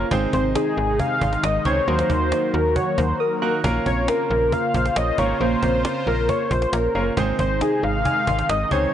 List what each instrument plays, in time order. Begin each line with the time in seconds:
0.11 fm bass G#1, analog synth pad C3 D#3 G#3 D#4, synth pluck G#3, grand piano C4 D#4 G#4 C5, cajon bass
0.33 fm bass G#1, synth pluck C4, analog synth lead C5, cajon bass
0.55 analog synth lead G#4, cajon slap
0.77 fm bass G#1, synth pluck G#4, cajon slap
0.99 analog synth lead F5, synth pluck G#5, cajon bass
1.21 fm bass G#1, synth pluck C6, cajon bass
1.33 cajon slap
1.44 fm bass G#1, analog synth lead D#5, synth pluck D#6, cajon slap
1.65 fm bass C#2, grand piano C4 D#4 G#4 C5, analog synth lead C#5, synth pluck G#6, cajon bass
1.88 fm bass D#2, analog synth pad F#3 A#3 F#4, synth pluck F#3, grand piano A#3 D#4 F#4 A#4, analog synth lead C5, cajon slap
1.99 cajon slap
2.10 fm bass D#2, synth pluck A#3, cajon bass
2.32 synth pluck D#4, cajon slap
2.54 fm bass D#2, synth pluck F#4, analog synth lead A#4, cajon slap
2.76 analog synth lead C#5, synth pluck F#5, cajon bass
2.98 fm bass D#2, analog synth lead C5, synth pluck A#5, cajon bass
3.20 analog synth lead A#4, synth pluck D#6
3.42 grand piano A#3 D#4 F#4 A#4, synth pluck F#6
3.64 fm bass A#1, analog synth pad C#3 F4 C5, synth pluck A#3, grand piano A#3 C#4 F4 A#4, cajon bass
3.86 fm bass A#1, synth pluck C4, analog synth lead C#5, cajon bass
4.08 synth pluck C#4, analog synth lead A#4, cajon slap
4.30 fm bass A#1, synth pluck F4, analog synth lead A#4, cajon slap
4.52 synth pluck A#4, analog synth lead F5, cajon bass
4.74 fm bass A#1, synth pluck C5, cajon bass
4.86 cajon slap
4.96 fm bass A#1, synth pluck C#5, analog synth lead D#5, cajon slap
5.18 fm bass G#1, grand piano A#3 C#4 F4 A#4, analog synth lead C#5, synth pluck F5, cajon bass
5.41 fm bass A#1, synth pluck A#3, grand piano A#3 C#4 F4 A#4, analog synth lead C5, cajon slap
5.63 fm bass A#1, synth pluck C4, cajon bass
5.85 synth pluck C#4, cajon slap
6.07 fm bass A#1, synth pluck F4, analog synth lead A#4, cajon slap
6.29 synth pluck A#4, analog synth lead C#5, cajon bass
6.51 fm bass A#1, synth pluck C5, analog synth lead C5, cajon bass
6.62 cajon slap
6.73 fm bass A#1, analog synth lead A#4, synth pluck C#5, cajon slap
6.95 fm bass F#1, grand piano A#3 C#4 F4 A#4, synth pluck F5, cajon slap
7.17 fm bass G#1, analog synth pad C3 D#3 G#3 D#4, synth pluck G#3, grand piano C4 D#4 G#4 C5, cajon bass
7.39 fm bass G#1, synth pluck C4, analog synth lead C5, cajon bass
7.61 synth pluck D#4, analog synth lead G#4, cajon slap
7.83 fm bass G#1, synth pluck G#4, analog synth lead F5, cajon slap
8.05 synth pluck G#5, cajon bass
8.27 fm bass G#1, synth pluck C6, cajon bass
8.39 cajon slap
8.49 fm bass G#1, analog synth lead D#5, synth pluck D#6, cajon slap
8.71 fm bass C#2, grand piano C4 D#4 G#4 C5, analog synth lead C#5, synth pluck G#6, cajon bass